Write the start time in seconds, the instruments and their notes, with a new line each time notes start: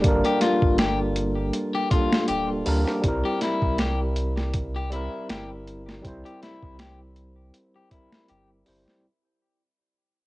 Already playing: tine electric piano A#3 D4 A4
0.00 tine electric piano G3 A#3, kick, closed hi-hat
0.04 sub bass G1, tine electric piano D4 A#4
0.25 clean electric guitar G4, closed hi-hat
0.41 clean electric guitar F4, snare, closed hi-hat
0.62 sub bass G1, kick
0.78 clean electric guitar G4, snare, closed hi-hat
1.16 closed hi-hat
1.53 closed hi-hat
1.75 clean electric guitar G4
1.91 tine electric piano G3 A#3 D4 A4, clean electric guitar F4, kick, closed hi-hat
2.13 snare
2.28 sub bass D1, clean electric guitar G4, closed hi-hat
2.66 sub bass D2, tine electric piano G3 A#3 D4 A#4, open hi-hat
2.88 snare
3.02 sub bass C2, tine electric piano G3 C4, kick, closed hi-hat
3.07 tine electric piano E4 A#4
3.25 clean electric guitar G4
3.41 clean electric guitar E4, snare, closed hi-hat
3.62 sub bass C2, kick
3.78 clean electric guitar G4, snare, closed hi-hat
4.16 closed hi-hat
4.37 snare
4.54 kick, closed hi-hat
4.76 clean electric guitar G4
4.90 tine electric piano G3 C4, clean electric guitar E4, closed hi-hat
4.94 tine electric piano E4 A#4
5.29 sub bass G1, clean electric guitar G4, snare, closed hi-hat
5.68 closed hi-hat
5.89 snare
6.01 sub bass C2, tine electric piano G3 C4, kick, closed hi-hat
6.06 tine electric piano E4 C5
6.25 clean electric guitar G4, closed hi-hat
6.43 clean electric guitar E4, snare, closed hi-hat
6.63 sub bass C2, kick
6.79 clean electric guitar G4, snare, closed hi-hat
7.16 closed hi-hat
7.54 closed hi-hat
7.76 clean electric guitar G4
7.91 tine electric piano G3 C4 E4 A#4, clean electric guitar E4, kick, closed hi-hat
8.12 snare
8.28 sub bass G1, clean electric guitar G4, closed hi-hat
8.66 sub bass G1, tine electric piano G3 C4 E4 C5, open hi-hat
8.88 snare